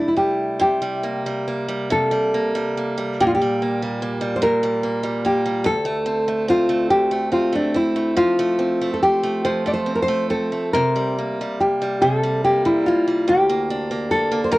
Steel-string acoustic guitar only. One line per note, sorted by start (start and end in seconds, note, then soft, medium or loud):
0.00 0.58 C3 medium
0.00 0.16 G3 soft
0.00 0.69 A3 soft
0.00 1.06 E4 soft
0.17 0.81 G3 soft
0.60 1.89 C3 medium
0.82 1.26 G3 soft
1.03 1.47 A#3 soft
1.26 1.68 G3 soft
1.47 2.34 A#3 soft
1.68 2.11 G3 soft
1.90 3.18 C3 medium
2.11 2.54 G3 soft
2.34 2.77 A#3 soft
2.55 2.97 G3 soft
2.77 3.62 A#3 soft
2.98 3.41 G3 soft
3.20 4.41 A#2 medium
3.42 3.81 G3 soft
3.62 4.01 A#3 soft
3.82 4.20 G3 soft
4.02 4.82 A#3 soft
4.21 4.62 G3 soft
4.42 5.73 A#2 medium
4.63 5.02 G3 soft
4.83 5.24 A#3 soft
5.03 5.44 G3 soft
5.25 5.74 A#3 medium
5.46 5.74 G3 soft
5.64 6.89 D2 medium
5.85 6.27 A3 soft
6.06 6.48 C4 medium
6.28 6.69 A3 soft
6.48 7.31 C4 medium
6.69 7.11 A3 soft
6.91 8.24 D2 medium
7.11 7.52 A3 soft
7.32 7.74 C4 soft
7.52 7.95 A3 soft
7.74 8.58 C4 soft
7.96 8.39 A3 soft
8.17 9.43 F3 medium
8.39 8.80 A3 medium
8.59 9.03 C4 soft
8.82 9.22 A3 soft
9.03 9.86 C4 soft
9.23 9.65 A3 soft
9.45 10.82 F3 medium
9.66 10.07 A3 soft
9.86 10.29 C4 soft
10.08 10.51 A3 soft
10.30 11.18 C4 soft
10.52 10.82 A3 soft
10.75 12.01 C3 medium
10.96 11.38 G3 soft
11.18 11.61 A#3 soft
11.41 11.80 G3 soft
11.61 12.44 A#3 soft
11.82 12.22 G3 soft
12.02 13.36 C3 medium
12.23 12.64 G3 soft
12.44 12.88 A#3 soft
12.65 13.07 G3 soft
12.88 13.49 A#3 soft
13.08 13.36 G3 soft
13.28 14.50 D2 medium
13.49 13.90 A#3 soft
13.70 14.11 D4 soft
13.91 14.30 A#3 soft
14.11 14.58 D4 soft
14.32 14.58 A#3 soft
14.52 14.58 D2 medium